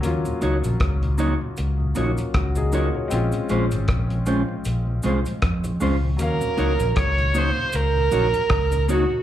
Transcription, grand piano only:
0.00 F#3 A#3 C#4
0.06 F4
1.95 F#3 A#3 C#4 F4
2.35 C#4 F#4
2.57 D#4 G#4
2.73 F4 A#4
2.95 G#4 C#5
3.08 G#3 C4
3.12 C#4 F4
6.17 F#3 A#3 C#4
6.22 F5

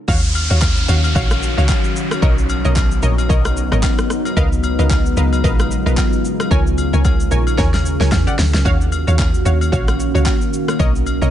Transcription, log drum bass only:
0.08 D#2
0.51 D#2
0.89 D#2
1.16 A#1
1.58 C#2
2.23 B1
2.65 B1
3.03 A#1
3.30 B1
3.72 G#1
4.37 C#2
4.79 C#2
5.17 C#2
5.44 A#1
5.86 B1
6.51 C#2
6.93 C#2
7.31 A#1
7.58 D#2
8.01 C#2
8.12 E2
8.38 D2
8.54 C#2
8.65 D#2
9.08 D#2
9.46 D#2
9.73 A#1
10.15 C#2
10.80 B1
11.22 B1

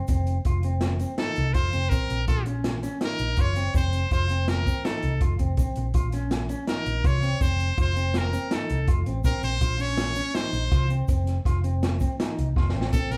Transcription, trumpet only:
1.19 A4
1.54 C5
1.90 A#4
2.28 A4
3.05 A#4
3.41 C#5
3.76 C5
4.13 C5
4.49 A#4
4.85 A4
6.69 A#4
7.06 C#5
7.42 C5
7.81 C5
8.18 A#4
8.54 A4
9.26 A#4
9.44 C5
9.81 C#5
10.35 C5
12.93 A4
13.12 A#4

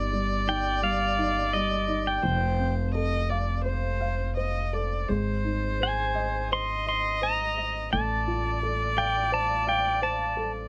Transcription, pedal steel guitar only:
0.49 G5
0.83 F5
1.53 D#5
2.07 G5
5.83 G#5
6.53 C6
6.89 C6
7.23 A#5
7.93 A5
8.98 G5
9.34 A5
9.69 G5
10.03 A5

